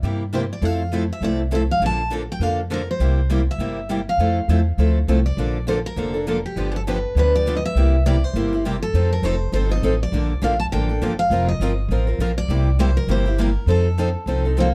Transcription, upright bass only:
0, 0, Header, 1, 2, 480
1, 0, Start_track
1, 0, Key_signature, -1, "major"
1, 0, Tempo, 296589
1, 1005, Time_signature, 4, 2, 24, 8
1, 8699, Key_signature, -2, "major"
1, 23858, End_track
2, 0, Start_track
2, 0, Title_t, "Upright bass"
2, 0, Program_c, 0, 32
2, 40, Note_on_c, 0, 43, 73
2, 810, Note_off_c, 0, 43, 0
2, 996, Note_on_c, 0, 41, 84
2, 1768, Note_off_c, 0, 41, 0
2, 1952, Note_on_c, 0, 36, 74
2, 2726, Note_off_c, 0, 36, 0
2, 2911, Note_on_c, 0, 34, 79
2, 3686, Note_off_c, 0, 34, 0
2, 3869, Note_on_c, 0, 41, 74
2, 4645, Note_off_c, 0, 41, 0
2, 4845, Note_on_c, 0, 36, 83
2, 5616, Note_off_c, 0, 36, 0
2, 5800, Note_on_c, 0, 31, 74
2, 6574, Note_off_c, 0, 31, 0
2, 6762, Note_on_c, 0, 41, 81
2, 7152, Note_off_c, 0, 41, 0
2, 7250, Note_on_c, 0, 40, 73
2, 7661, Note_off_c, 0, 40, 0
2, 7729, Note_on_c, 0, 38, 75
2, 8141, Note_off_c, 0, 38, 0
2, 8211, Note_on_c, 0, 36, 70
2, 8622, Note_off_c, 0, 36, 0
2, 8692, Note_on_c, 0, 34, 83
2, 9464, Note_off_c, 0, 34, 0
2, 9652, Note_on_c, 0, 29, 78
2, 10425, Note_off_c, 0, 29, 0
2, 10615, Note_on_c, 0, 31, 86
2, 11387, Note_off_c, 0, 31, 0
2, 11571, Note_on_c, 0, 38, 80
2, 12345, Note_off_c, 0, 38, 0
2, 12542, Note_on_c, 0, 36, 86
2, 13311, Note_off_c, 0, 36, 0
2, 13489, Note_on_c, 0, 31, 81
2, 14264, Note_off_c, 0, 31, 0
2, 14459, Note_on_c, 0, 41, 83
2, 14846, Note_off_c, 0, 41, 0
2, 14924, Note_on_c, 0, 29, 78
2, 15341, Note_off_c, 0, 29, 0
2, 15410, Note_on_c, 0, 31, 78
2, 15824, Note_off_c, 0, 31, 0
2, 15892, Note_on_c, 0, 33, 78
2, 16306, Note_off_c, 0, 33, 0
2, 16378, Note_on_c, 0, 34, 85
2, 16765, Note_off_c, 0, 34, 0
2, 16862, Note_on_c, 0, 34, 77
2, 17271, Note_off_c, 0, 34, 0
2, 17356, Note_on_c, 0, 33, 77
2, 17759, Note_off_c, 0, 33, 0
2, 17829, Note_on_c, 0, 31, 77
2, 18235, Note_off_c, 0, 31, 0
2, 18291, Note_on_c, 0, 29, 86
2, 18679, Note_off_c, 0, 29, 0
2, 18770, Note_on_c, 0, 31, 77
2, 19183, Note_off_c, 0, 31, 0
2, 19235, Note_on_c, 0, 33, 81
2, 19654, Note_off_c, 0, 33, 0
2, 19721, Note_on_c, 0, 34, 76
2, 20137, Note_off_c, 0, 34, 0
2, 20204, Note_on_c, 0, 36, 86
2, 20977, Note_off_c, 0, 36, 0
2, 21152, Note_on_c, 0, 31, 85
2, 21929, Note_off_c, 0, 31, 0
2, 22111, Note_on_c, 0, 41, 84
2, 22887, Note_off_c, 0, 41, 0
2, 23078, Note_on_c, 0, 36, 80
2, 23850, Note_off_c, 0, 36, 0
2, 23858, End_track
0, 0, End_of_file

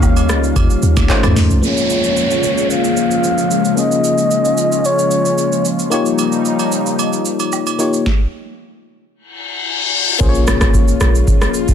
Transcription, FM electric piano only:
0, 0, Header, 1, 2, 480
1, 0, Start_track
1, 0, Tempo, 535714
1, 1463, Time_signature, 4, 2, 24, 8
1, 10521, End_track
2, 0, Start_track
2, 0, Title_t, "FM electric piano"
2, 0, Program_c, 0, 5
2, 0, Control_c, 0, 64, 127
2, 0, Note_on_c, 0, 58, 80
2, 0, Note_on_c, 0, 63, 73
2, 0, Note_on_c, 0, 65, 72
2, 0, Note_on_c, 0, 67, 74
2, 0, Note_on_c, 0, 73, 87
2, 947, Note_off_c, 0, 58, 0
2, 951, Note_off_c, 0, 63, 0
2, 955, Note_off_c, 0, 65, 0
2, 959, Note_off_c, 0, 67, 0
2, 963, Note_off_c, 0, 73, 0
2, 975, Note_on_c, 0, 57, 80
2, 979, Note_on_c, 0, 61, 76
2, 983, Note_on_c, 0, 63, 73
2, 988, Note_on_c, 0, 65, 74
2, 991, Note_on_c, 0, 72, 88
2, 996, Control_c, 0, 64, 0
2, 1163, Control_c, 0, 64, 127
2, 1445, Note_off_c, 0, 61, 0
2, 1448, Note_on_c, 0, 58, 59
2, 1453, Note_off_c, 0, 65, 0
2, 1456, Note_on_c, 0, 61, 57
2, 1459, Note_off_c, 0, 57, 0
2, 1463, Note_off_c, 0, 63, 0
2, 1464, Note_on_c, 0, 65, 56
2, 1467, Note_off_c, 0, 72, 0
2, 1472, Note_on_c, 0, 68, 55
2, 1473, Control_c, 0, 64, 0
2, 1480, Note_on_c, 0, 73, 67
2, 1650, Control_c, 0, 64, 127
2, 3340, Note_off_c, 0, 58, 0
2, 3344, Note_off_c, 0, 61, 0
2, 3348, Note_off_c, 0, 65, 0
2, 3352, Note_off_c, 0, 68, 0
2, 3356, Note_off_c, 0, 73, 0
2, 3366, Note_on_c, 0, 58, 62
2, 3375, Note_on_c, 0, 61, 59
2, 3382, Note_on_c, 0, 65, 53
2, 3391, Note_on_c, 0, 68, 57
2, 3398, Note_on_c, 0, 75, 66
2, 5259, Note_off_c, 0, 58, 0
2, 5263, Note_off_c, 0, 61, 0
2, 5267, Note_off_c, 0, 65, 0
2, 5271, Note_off_c, 0, 68, 0
2, 5275, Note_off_c, 0, 75, 0
2, 5289, Note_on_c, 0, 58, 75
2, 5297, Note_on_c, 0, 63, 68
2, 5305, Note_on_c, 0, 65, 68
2, 5312, Note_on_c, 0, 67, 64
2, 5315, Control_c, 0, 64, 0
2, 5320, Note_on_c, 0, 73, 78
2, 5487, Control_c, 0, 64, 127
2, 6942, Note_off_c, 0, 58, 0
2, 6947, Note_off_c, 0, 63, 0
2, 6951, Note_off_c, 0, 65, 0
2, 6954, Note_off_c, 0, 67, 0
2, 6958, Note_off_c, 0, 73, 0
2, 6975, Note_on_c, 0, 58, 61
2, 6979, Note_on_c, 0, 63, 55
2, 6984, Note_on_c, 0, 65, 52
2, 6988, Note_on_c, 0, 67, 53
2, 6992, Note_on_c, 0, 73, 66
2, 7219, Note_off_c, 0, 58, 0
2, 7221, Note_off_c, 0, 63, 0
2, 7224, Note_off_c, 0, 65, 0
2, 7226, Note_off_c, 0, 67, 0
2, 7228, Note_off_c, 0, 73, 0
2, 7237, Control_c, 0, 64, 0
2, 9129, Note_on_c, 0, 58, 80
2, 9137, Note_on_c, 0, 61, 70
2, 9145, Note_on_c, 0, 65, 74
2, 9153, Note_on_c, 0, 68, 72
2, 9160, Note_on_c, 0, 72, 68
2, 9212, Note_off_c, 0, 72, 0
2, 9218, Note_on_c, 0, 73, 86
2, 9335, Control_c, 0, 64, 127
2, 10521, Note_off_c, 0, 58, 0
2, 10521, Note_off_c, 0, 61, 0
2, 10521, Note_off_c, 0, 65, 0
2, 10521, Note_off_c, 0, 68, 0
2, 10521, Note_off_c, 0, 73, 0
2, 10521, End_track
0, 0, End_of_file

